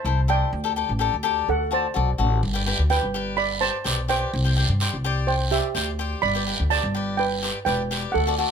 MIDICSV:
0, 0, Header, 1, 5, 480
1, 0, Start_track
1, 0, Key_signature, 1, "major"
1, 0, Tempo, 476190
1, 530, Time_signature, 4, 2, 24, 8
1, 8578, End_track
2, 0, Start_track
2, 0, Title_t, "Steel pan"
2, 0, Program_c, 0, 114
2, 0, Note_on_c, 0, 72, 85
2, 0, Note_on_c, 0, 81, 107
2, 260, Note_off_c, 0, 81, 0
2, 263, Note_off_c, 0, 72, 0
2, 300, Note_on_c, 0, 79, 106
2, 306, Note_on_c, 0, 74, 77
2, 1456, Note_off_c, 0, 74, 0
2, 1502, Note_on_c, 0, 69, 70
2, 1509, Note_on_c, 0, 78, 85
2, 1530, Note_off_c, 0, 79, 0
2, 1719, Note_off_c, 0, 69, 0
2, 1722, Note_off_c, 0, 78, 0
2, 1744, Note_on_c, 0, 72, 63
2, 1756, Note_on_c, 0, 81, 81
2, 2183, Note_off_c, 0, 72, 0
2, 2189, Note_off_c, 0, 81, 0
2, 2926, Note_on_c, 0, 79, 107
2, 2933, Note_on_c, 0, 71, 89
2, 3377, Note_off_c, 0, 71, 0
2, 3396, Note_on_c, 0, 83, 106
2, 3407, Note_on_c, 0, 74, 86
2, 3421, Note_off_c, 0, 79, 0
2, 3630, Note_off_c, 0, 74, 0
2, 3637, Note_on_c, 0, 81, 93
2, 3638, Note_on_c, 0, 72, 73
2, 3649, Note_off_c, 0, 83, 0
2, 4089, Note_off_c, 0, 72, 0
2, 4128, Note_on_c, 0, 79, 101
2, 4134, Note_on_c, 0, 72, 83
2, 4136, Note_off_c, 0, 81, 0
2, 5290, Note_off_c, 0, 72, 0
2, 5310, Note_off_c, 0, 79, 0
2, 5313, Note_on_c, 0, 72, 74
2, 5322, Note_on_c, 0, 79, 90
2, 5424, Note_off_c, 0, 72, 0
2, 5431, Note_off_c, 0, 79, 0
2, 5557, Note_on_c, 0, 67, 62
2, 5563, Note_on_c, 0, 76, 75
2, 6008, Note_off_c, 0, 67, 0
2, 6011, Note_off_c, 0, 76, 0
2, 6268, Note_on_c, 0, 83, 114
2, 6277, Note_on_c, 0, 74, 82
2, 6724, Note_off_c, 0, 83, 0
2, 6729, Note_off_c, 0, 74, 0
2, 6757, Note_on_c, 0, 81, 117
2, 6768, Note_on_c, 0, 74, 84
2, 7215, Note_off_c, 0, 74, 0
2, 7231, Note_on_c, 0, 79, 100
2, 7252, Note_on_c, 0, 71, 83
2, 7257, Note_off_c, 0, 81, 0
2, 7697, Note_off_c, 0, 71, 0
2, 7700, Note_off_c, 0, 79, 0
2, 7712, Note_on_c, 0, 79, 93
2, 7722, Note_on_c, 0, 71, 81
2, 8172, Note_off_c, 0, 71, 0
2, 8185, Note_on_c, 0, 78, 94
2, 8208, Note_on_c, 0, 69, 79
2, 8215, Note_off_c, 0, 79, 0
2, 8578, Note_off_c, 0, 69, 0
2, 8578, Note_off_c, 0, 78, 0
2, 8578, End_track
3, 0, Start_track
3, 0, Title_t, "Cavaquinho"
3, 0, Program_c, 1, 24
3, 53, Note_on_c, 1, 64, 66
3, 57, Note_on_c, 1, 69, 67
3, 72, Note_on_c, 1, 72, 75
3, 200, Note_off_c, 1, 64, 0
3, 202, Note_off_c, 1, 69, 0
3, 209, Note_off_c, 1, 72, 0
3, 283, Note_on_c, 1, 64, 71
3, 289, Note_on_c, 1, 69, 72
3, 299, Note_on_c, 1, 72, 82
3, 503, Note_off_c, 1, 64, 0
3, 507, Note_off_c, 1, 69, 0
3, 511, Note_off_c, 1, 72, 0
3, 643, Note_on_c, 1, 67, 72
3, 651, Note_on_c, 1, 69, 64
3, 664, Note_on_c, 1, 74, 74
3, 718, Note_off_c, 1, 67, 0
3, 722, Note_off_c, 1, 69, 0
3, 728, Note_off_c, 1, 74, 0
3, 768, Note_on_c, 1, 67, 77
3, 775, Note_on_c, 1, 69, 73
3, 783, Note_on_c, 1, 74, 82
3, 917, Note_off_c, 1, 67, 0
3, 920, Note_off_c, 1, 69, 0
3, 924, Note_off_c, 1, 74, 0
3, 998, Note_on_c, 1, 67, 81
3, 1011, Note_on_c, 1, 69, 77
3, 1019, Note_on_c, 1, 74, 90
3, 1152, Note_off_c, 1, 67, 0
3, 1158, Note_off_c, 1, 69, 0
3, 1162, Note_off_c, 1, 74, 0
3, 1239, Note_on_c, 1, 67, 93
3, 1247, Note_on_c, 1, 69, 76
3, 1259, Note_on_c, 1, 74, 96
3, 1484, Note_off_c, 1, 67, 0
3, 1488, Note_off_c, 1, 69, 0
3, 1494, Note_off_c, 1, 74, 0
3, 1721, Note_on_c, 1, 66, 60
3, 1730, Note_on_c, 1, 69, 68
3, 1737, Note_on_c, 1, 74, 74
3, 1873, Note_off_c, 1, 66, 0
3, 1877, Note_off_c, 1, 69, 0
3, 1881, Note_off_c, 1, 74, 0
3, 1956, Note_on_c, 1, 66, 74
3, 1971, Note_on_c, 1, 69, 59
3, 1979, Note_on_c, 1, 74, 78
3, 2110, Note_off_c, 1, 66, 0
3, 2118, Note_off_c, 1, 69, 0
3, 2122, Note_off_c, 1, 74, 0
3, 2201, Note_on_c, 1, 66, 70
3, 2206, Note_on_c, 1, 69, 62
3, 2215, Note_on_c, 1, 74, 72
3, 2421, Note_off_c, 1, 66, 0
3, 2424, Note_off_c, 1, 69, 0
3, 2428, Note_off_c, 1, 74, 0
3, 2557, Note_on_c, 1, 67, 80
3, 2569, Note_on_c, 1, 71, 68
3, 2574, Note_on_c, 1, 74, 95
3, 2634, Note_off_c, 1, 67, 0
3, 2640, Note_off_c, 1, 71, 0
3, 2642, Note_off_c, 1, 74, 0
3, 2685, Note_on_c, 1, 67, 82
3, 2692, Note_on_c, 1, 71, 81
3, 2697, Note_on_c, 1, 74, 98
3, 2834, Note_off_c, 1, 67, 0
3, 2838, Note_off_c, 1, 71, 0
3, 2841, Note_off_c, 1, 74, 0
3, 2920, Note_on_c, 1, 67, 70
3, 2937, Note_on_c, 1, 71, 60
3, 2945, Note_on_c, 1, 74, 68
3, 3072, Note_off_c, 1, 67, 0
3, 3080, Note_off_c, 1, 71, 0
3, 3085, Note_off_c, 1, 74, 0
3, 3167, Note_on_c, 1, 67, 77
3, 3177, Note_on_c, 1, 71, 72
3, 3184, Note_on_c, 1, 74, 80
3, 3457, Note_off_c, 1, 67, 0
3, 3462, Note_off_c, 1, 71, 0
3, 3466, Note_off_c, 1, 74, 0
3, 3642, Note_on_c, 1, 67, 60
3, 3650, Note_on_c, 1, 71, 63
3, 3659, Note_on_c, 1, 74, 64
3, 3793, Note_off_c, 1, 67, 0
3, 3797, Note_off_c, 1, 71, 0
3, 3801, Note_off_c, 1, 74, 0
3, 3874, Note_on_c, 1, 67, 69
3, 3883, Note_on_c, 1, 71, 67
3, 3895, Note_on_c, 1, 74, 78
3, 4029, Note_off_c, 1, 67, 0
3, 4033, Note_off_c, 1, 71, 0
3, 4039, Note_off_c, 1, 74, 0
3, 4116, Note_on_c, 1, 67, 72
3, 4128, Note_on_c, 1, 71, 76
3, 4136, Note_on_c, 1, 74, 84
3, 4339, Note_off_c, 1, 67, 0
3, 4345, Note_off_c, 1, 71, 0
3, 4349, Note_off_c, 1, 74, 0
3, 4480, Note_on_c, 1, 67, 70
3, 4491, Note_on_c, 1, 72, 66
3, 4500, Note_on_c, 1, 74, 76
3, 4555, Note_off_c, 1, 67, 0
3, 4560, Note_off_c, 1, 72, 0
3, 4565, Note_off_c, 1, 74, 0
3, 4601, Note_on_c, 1, 67, 82
3, 4613, Note_on_c, 1, 72, 67
3, 4624, Note_on_c, 1, 74, 77
3, 4752, Note_off_c, 1, 67, 0
3, 4758, Note_off_c, 1, 72, 0
3, 4764, Note_off_c, 1, 74, 0
3, 4848, Note_on_c, 1, 67, 82
3, 4859, Note_on_c, 1, 72, 69
3, 4866, Note_on_c, 1, 74, 104
3, 4996, Note_off_c, 1, 67, 0
3, 5001, Note_off_c, 1, 72, 0
3, 5005, Note_off_c, 1, 74, 0
3, 5085, Note_on_c, 1, 67, 99
3, 5091, Note_on_c, 1, 72, 80
3, 5103, Note_on_c, 1, 74, 104
3, 5376, Note_off_c, 1, 67, 0
3, 5379, Note_off_c, 1, 72, 0
3, 5385, Note_off_c, 1, 74, 0
3, 5549, Note_on_c, 1, 67, 71
3, 5558, Note_on_c, 1, 72, 61
3, 5566, Note_on_c, 1, 74, 74
3, 5706, Note_off_c, 1, 67, 0
3, 5711, Note_off_c, 1, 72, 0
3, 5715, Note_off_c, 1, 74, 0
3, 5793, Note_on_c, 1, 67, 76
3, 5800, Note_on_c, 1, 72, 71
3, 5809, Note_on_c, 1, 74, 84
3, 5948, Note_off_c, 1, 67, 0
3, 5952, Note_off_c, 1, 72, 0
3, 5957, Note_off_c, 1, 74, 0
3, 6038, Note_on_c, 1, 67, 78
3, 6044, Note_on_c, 1, 72, 65
3, 6056, Note_on_c, 1, 74, 84
3, 6260, Note_off_c, 1, 67, 0
3, 6263, Note_off_c, 1, 72, 0
3, 6269, Note_off_c, 1, 74, 0
3, 6398, Note_on_c, 1, 67, 70
3, 6406, Note_on_c, 1, 71, 67
3, 6415, Note_on_c, 1, 74, 79
3, 6474, Note_off_c, 1, 67, 0
3, 6478, Note_off_c, 1, 71, 0
3, 6483, Note_off_c, 1, 74, 0
3, 6522, Note_on_c, 1, 67, 72
3, 6529, Note_on_c, 1, 71, 59
3, 6538, Note_on_c, 1, 74, 82
3, 6673, Note_off_c, 1, 67, 0
3, 6674, Note_off_c, 1, 71, 0
3, 6681, Note_off_c, 1, 74, 0
3, 6762, Note_on_c, 1, 67, 76
3, 6771, Note_on_c, 1, 71, 67
3, 6781, Note_on_c, 1, 74, 82
3, 6913, Note_off_c, 1, 67, 0
3, 6918, Note_off_c, 1, 71, 0
3, 6923, Note_off_c, 1, 74, 0
3, 7001, Note_on_c, 1, 67, 79
3, 7007, Note_on_c, 1, 71, 65
3, 7021, Note_on_c, 1, 74, 88
3, 7294, Note_off_c, 1, 67, 0
3, 7298, Note_off_c, 1, 71, 0
3, 7305, Note_off_c, 1, 74, 0
3, 7483, Note_on_c, 1, 67, 77
3, 7498, Note_on_c, 1, 71, 67
3, 7511, Note_on_c, 1, 74, 84
3, 7634, Note_off_c, 1, 67, 0
3, 7641, Note_off_c, 1, 71, 0
3, 7648, Note_off_c, 1, 74, 0
3, 7723, Note_on_c, 1, 67, 73
3, 7732, Note_on_c, 1, 71, 68
3, 7740, Note_on_c, 1, 74, 82
3, 7874, Note_off_c, 1, 67, 0
3, 7878, Note_off_c, 1, 71, 0
3, 7882, Note_off_c, 1, 74, 0
3, 7972, Note_on_c, 1, 67, 72
3, 7981, Note_on_c, 1, 71, 60
3, 7983, Note_on_c, 1, 74, 90
3, 8188, Note_off_c, 1, 67, 0
3, 8190, Note_off_c, 1, 71, 0
3, 8193, Note_off_c, 1, 74, 0
3, 8334, Note_on_c, 1, 66, 70
3, 8343, Note_on_c, 1, 69, 66
3, 8351, Note_on_c, 1, 74, 88
3, 8403, Note_off_c, 1, 66, 0
3, 8407, Note_off_c, 1, 69, 0
3, 8411, Note_off_c, 1, 74, 0
3, 8449, Note_on_c, 1, 66, 79
3, 8459, Note_on_c, 1, 69, 61
3, 8464, Note_on_c, 1, 74, 76
3, 8578, Note_off_c, 1, 66, 0
3, 8578, Note_off_c, 1, 69, 0
3, 8578, Note_off_c, 1, 74, 0
3, 8578, End_track
4, 0, Start_track
4, 0, Title_t, "Upright bass"
4, 0, Program_c, 2, 32
4, 45, Note_on_c, 2, 36, 98
4, 425, Note_off_c, 2, 36, 0
4, 530, Note_on_c, 2, 38, 107
4, 818, Note_off_c, 2, 38, 0
4, 899, Note_on_c, 2, 33, 98
4, 1086, Note_off_c, 2, 33, 0
4, 1145, Note_on_c, 2, 38, 93
4, 1420, Note_off_c, 2, 38, 0
4, 1494, Note_on_c, 2, 38, 94
4, 1870, Note_off_c, 2, 38, 0
4, 1978, Note_on_c, 2, 35, 90
4, 2189, Note_off_c, 2, 35, 0
4, 2207, Note_on_c, 2, 33, 107
4, 2424, Note_off_c, 2, 33, 0
4, 2450, Note_on_c, 2, 31, 98
4, 2737, Note_off_c, 2, 31, 0
4, 2810, Note_on_c, 2, 38, 93
4, 3000, Note_off_c, 2, 38, 0
4, 3051, Note_on_c, 2, 31, 92
4, 3709, Note_off_c, 2, 31, 0
4, 3885, Note_on_c, 2, 35, 96
4, 4264, Note_off_c, 2, 35, 0
4, 4370, Note_on_c, 2, 36, 111
4, 4657, Note_off_c, 2, 36, 0
4, 4729, Note_on_c, 2, 43, 97
4, 4920, Note_off_c, 2, 43, 0
4, 4976, Note_on_c, 2, 36, 101
4, 5633, Note_off_c, 2, 36, 0
4, 5793, Note_on_c, 2, 38, 87
4, 6177, Note_off_c, 2, 38, 0
4, 6279, Note_on_c, 2, 31, 100
4, 6571, Note_off_c, 2, 31, 0
4, 6652, Note_on_c, 2, 38, 102
4, 6842, Note_off_c, 2, 38, 0
4, 6888, Note_on_c, 2, 31, 102
4, 7549, Note_off_c, 2, 31, 0
4, 7724, Note_on_c, 2, 28, 98
4, 8104, Note_off_c, 2, 28, 0
4, 8217, Note_on_c, 2, 38, 95
4, 8502, Note_off_c, 2, 38, 0
4, 8578, End_track
5, 0, Start_track
5, 0, Title_t, "Drums"
5, 2449, Note_on_c, 9, 74, 77
5, 2550, Note_off_c, 9, 74, 0
5, 2933, Note_on_c, 9, 73, 71
5, 3034, Note_off_c, 9, 73, 0
5, 3405, Note_on_c, 9, 74, 76
5, 3506, Note_off_c, 9, 74, 0
5, 3891, Note_on_c, 9, 73, 92
5, 3992, Note_off_c, 9, 73, 0
5, 4127, Note_on_c, 9, 73, 81
5, 4228, Note_off_c, 9, 73, 0
5, 4370, Note_on_c, 9, 74, 82
5, 4471, Note_off_c, 9, 74, 0
5, 4841, Note_on_c, 9, 73, 78
5, 4942, Note_off_c, 9, 73, 0
5, 5327, Note_on_c, 9, 74, 86
5, 5428, Note_off_c, 9, 74, 0
5, 5566, Note_on_c, 9, 73, 76
5, 5667, Note_off_c, 9, 73, 0
5, 5803, Note_on_c, 9, 73, 86
5, 5904, Note_off_c, 9, 73, 0
5, 6282, Note_on_c, 9, 74, 76
5, 6382, Note_off_c, 9, 74, 0
5, 6771, Note_on_c, 9, 73, 63
5, 6872, Note_off_c, 9, 73, 0
5, 7248, Note_on_c, 9, 74, 81
5, 7349, Note_off_c, 9, 74, 0
5, 7493, Note_on_c, 9, 73, 65
5, 7594, Note_off_c, 9, 73, 0
5, 7736, Note_on_c, 9, 73, 67
5, 7837, Note_off_c, 9, 73, 0
5, 7975, Note_on_c, 9, 73, 69
5, 8076, Note_off_c, 9, 73, 0
5, 8219, Note_on_c, 9, 74, 69
5, 8320, Note_off_c, 9, 74, 0
5, 8578, End_track
0, 0, End_of_file